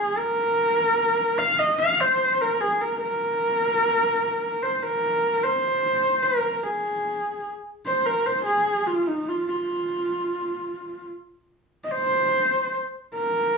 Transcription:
horsehead fiddle
Already playing: G#4
0.18 A#4
1.38 F5
1.59 D#5
1.79 F5
2.00 C5
2.41 A#4
2.61 G#4
2.81 A#4
3.01 A#4
4.62 C5
4.74 C5
4.83 A#4
5.43 C5
6.23 A#4
6.63 G#4
7.86 C5
8.06 A#4
8.26 C5
8.46 G#4
8.87 F4
9.08 D#4
9.29 F4
9.48 F4
11.84 D#5
11.91 C5
13.15 A#4

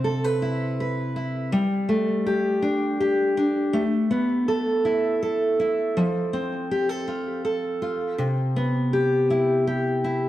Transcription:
steel-string acoustic guitar
Already playing: C3 C4
0.04 A4
0.24 B4
0.42 E4
0.80 B4
1.16 E4
1.52 G3
1.89 A3
2.26 G4
2.62 D4
3.00 G4
3.37 D4
3.73 A3
4.11 B3
4.48 A4
4.85 E4
5.22 A4
5.60 E4
5.97 F3
6.33 C4
6.71 G4
6.89 A4
7.08 F4
7.45 A4
7.82 F4
8.18 C3
8.56 B3
8.93 G4
9.30 E4
9.67 G4
10.04 E4

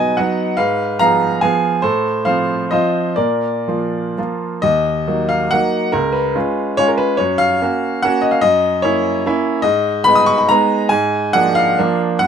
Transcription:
grand piano
Already playing: B2 F#3 B3 D#4 B4 D#5 G#5
0.17 F#3 B3 D#4 D#5 F#5
0.57 G#2 B4 F5
0.99 F3 B3 G#4 F5 A#5
1.41 F3 B3 G#4 F5 G#5
1.82 A2 A4 C5
2.25 F3 C4 F4 C5 F5
2.71 F3 C4 F4 C5 D#5
3.16 A#2 A#4 D5
3.68 F3 A#3 F4
4.18 F3 A#3 F4
4.62 D#2 D#5
5.08 F#3 A#3 D#4
5.29 F5
5.51 F#3 A#3 D#4 F#5
5.92 C#2 A#4
6.12 B4
6.35 G#3 C#4 F4
6.77 G#3 C#4 F4 C#5
6.88 A#4
6.98 B4
7.17 F#2 C#5
7.38 F5
7.62 A#3 C#4 F#4
8.03 A#3 C#4 F#4 F#5
8.22 D#5
8.31 F5
8.41 F#2 D#5
8.82 A#3 C#4 E4 C#5
9.26 A#3 C#4 E4
9.62 G#2 D#5
10.04 G#3 B3 D#4 B5
10.15 D#6
10.26 C#6
10.38 B5
10.49 G#3 B3 D#4 A#5
10.89 G#2 G#5
11.33 F3 A#3 D4 F#5
11.55 F5
11.78 F3 A#3 D4
12.19 F#2 F#5

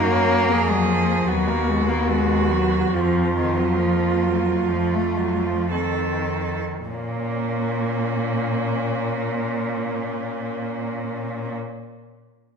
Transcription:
cello
Already playing: F#2 A#3 D#4 F#4
0.13 C#4
0.51 F2 A#3 G#4
0.71 F#3
0.90 F3
1.28 D#2 F#3 B3 F#4
1.49 A#3
1.69 G#3
1.89 A#3
2.08 G#3 F#4
2.51 F#3
2.93 F2 F3 C4 F4
3.36 D#3
3.57 F#3
3.77 F3 A#3
4.22 F#3
4.67 F2 F3 A3
4.93 A3
5.18 F#3
5.45 F3
5.71 D#3 C4 A4
6.87 A#2 A#3 C#4

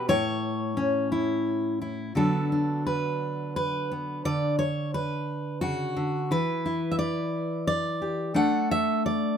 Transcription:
steel-string acoustic guitar
0.09 A2 C#5
0.77 C#4
1.12 E4
1.81 E4
2.15 D3 F#3 B3 D4 A4
2.52 D4
2.87 B4
3.56 B4
3.92 B3
4.25 D3 D5
4.59 C#5
4.94 B4
5.61 C#3 F#4
5.96 D3
6.31 E3 B4
6.66 E4
6.91 E5
6.99 D5
7.67 D5
8.02 G4
8.34 A3 D4 A4 F#5
8.71 E5
9.06 D5

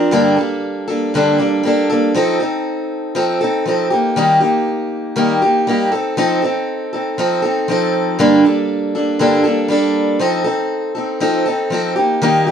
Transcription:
steel-string acoustic guitar
Already playing: F3 C4 D4 A#4
0.11 G2 D3 G3 A#3 D4 A4
0.37 G3 A#3 D4 A4
0.88 G3 A#3 D4 A4
1.14 G2 D3 G3 A#3 D4 A4
1.38 G3 A#3 D4 A4
1.63 G3 A#3 D4 A4
1.89 G3 A#3 D4 A4
2.14 F3 C4 D#4 A4
2.40 C4 D#4 A4
3.15 F3 C4 D#4 A4
3.41 C4 D#4 A4
3.66 F3 C4 D#4 A4
3.90 A#3 D#4 G4
4.16 D#3 G3 A#3 D#4 G4
4.40 A#3 D#4 G4
5.16 D#3 G3 A#3 D#4 G4
5.42 A#3 D#4 G4
5.67 G3 A#3 D#4 G4
5.92 C4 D#4 A4
6.17 F3 C4 D#4 A4
6.42 C4 D#4 A4
6.93 C4 D#4 A4
7.18 F3 C4 D#4 A4
7.42 C4 D#4 A4
7.68 F3 C4 D#4 A4
8.19 G2 D3 G3 A#3 D4 A4
8.44 G3 A4
8.95 G3 A#3 D4 A4
9.19 G2 D3 G3 A#3 D4 A4
9.44 G3 A#3 D4 A4
9.68 G3 A#3 D4 A4
10.19 F3 C4 D#4 A4
10.44 C4 D#4 A4
10.95 C4 D#4 A4
11.20 F3 C4 D#4 A4
11.46 C4 D#4 A4
11.70 F3 C4 D#4 A4
11.96 A#3 D#4 G4
12.22 D#3 G3 A#3 D#4 G4
12.46 D#4 G4

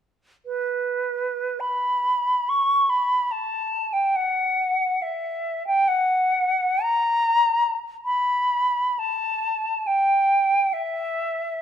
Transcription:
flute
0.46 B4
1.60 B5
2.49 C#6
2.89 B5
3.31 A5
3.93 G5
4.15 F#5
5.02 E5
5.67 G5
5.88 F#5
6.82 A#5
8.05 B5
8.99 A5
9.86 G5
10.73 E5

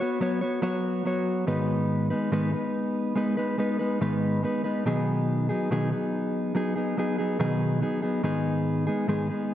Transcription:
clean electric guitar
0.00 B3 F#4 C#5
0.20 F#3 B3 F#4 C#5
0.41 B3 F#4 C#5
0.62 F#3 B3 F#4 C#5
1.05 F#3 B3 F#4 C#5
1.47 G#2 D#3 G#3 B3 D#4 B4
2.10 G#3 B3 D#4 B4
2.32 G#2 D#3 G#3 B3 D#4 B4
2.53 G#3 B3 D#4 B4
3.16 G#3 B3 D#4 B4
3.37 G#3 B3 D#4 B4
3.58 G#3 B3 D#4 B4
3.79 G#3 B3 D#4 B4
4.01 G#2 D#3 G#3 B3 D#4 B4
4.43 G#3 B3 D#4 B4
4.64 G#3 B3 D#4 B4
4.85 B2 D#3 F#3 B3 D#4 G#4
5.49 F#3 B3 D#4 G#4
5.71 B2 D#3 F#3 B3 D#4 G#4
5.92 F#3 B3 D#4 G#4
6.55 F#3 B3 D#4 G#4
6.76 F#3 B3 D#4 G#4
6.97 F#3 B3 D#4 G#4
7.18 F#3 B3 D#4 G#4
7.39 B2 D#3 F#3 B3 D#4 G#4
7.81 F#3 B3 D#4 G#4
8.02 F#3 B3 D#4 G#4
8.23 G#2 D#3 G#3 B3 D#4 G#4
8.87 G#3 B3 D#4 G#4
9.08 G#2 D#3 G#3 B3 D#4 G#4
9.30 G#3 B3 D#4 G#4

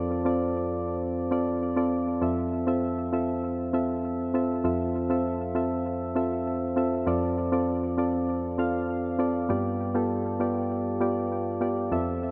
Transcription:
synth keys
Already playing: F2 C4 F4 A4 D5
0.25 C4 F4 A4 D5
1.31 C4 F4 A4 D5
1.76 C4 F4 A4 D5
2.21 F2 C4 F4 A4 E5
2.67 C4 F4 A4 E5
3.13 C4 F4 A4 E5
3.73 C4 F4 A4 E5
4.34 C4 F4 A4 E5
4.64 F2 C4 F4 A4 E5
5.10 C4 F4 A4 E5
5.55 C4 F4 A4 E5
6.15 C4 F4 A4 E5
6.76 C4 F4 A4 E5
7.06 F2 C4 F4 A4 D5
7.52 C4 F4 A4 D5
7.97 C4 F4 A4 D5
8.58 C4 F4 A4 F5
9.19 C4 F4 A4 D5
9.49 G2 B3 F4 G4 D5
9.94 B3 F4 G4 A4
10.40 B3 F4 G4 D5
11.00 B3 F4 G4 D5
11.61 B3 F4 G4 D5
11.91 F2 C4 F4 A4 E5

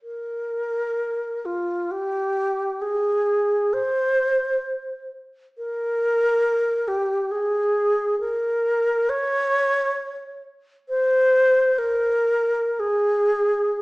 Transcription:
alto flute
0.03 A#4
1.45 F4
1.91 G4
2.82 G#4
3.73 C5
5.58 A#4
6.88 G4
7.31 G#4
8.20 A#4
9.09 C#5
10.89 C5
11.78 A#4
12.80 G#4

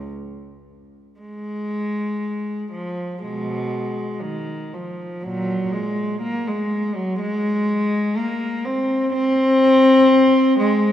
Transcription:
cello
Already playing: C#2
1.20 G#3
2.72 F3
3.23 B2 G#3
4.22 D#3
4.74 F3
5.23 A#2 F#3
5.72 G#3
6.21 A#3
6.48 G#3
6.96 F#3
7.20 G#3
8.17 A#3
8.65 C4
9.13 C4
10.59 G#3

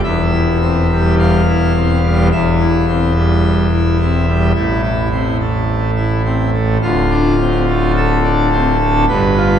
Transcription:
pipe organ
0.03 E1 E2 E5
0.32 E4
0.61 C4
0.91 G3
1.19 F5
1.48 E4
1.75 C4
2.03 G3
2.32 E1 E2 E5
2.60 E4
2.88 C4
3.16 G3
3.72 E4
4.00 C4
4.27 G3
4.55 A1 A2 E4
4.83 E4
5.11 C4
5.40 A3
5.97 E4
6.25 C4
6.53 A3
6.82 D1 D2 F4
7.10 D4
7.40 C4
7.68 A3
7.96 A4
8.24 D4
8.52 C4
8.80 A3
9.08 G1 G2 B4
9.37 F4

